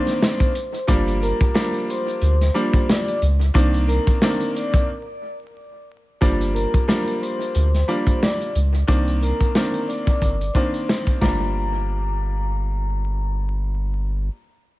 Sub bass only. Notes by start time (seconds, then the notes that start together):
0.88 G1
2.22 D2
3.22 C#2
3.55 C2
6.22 G1
7.55 D2
8.55 C#2
8.88 C2
10.22 G1
11.22 G1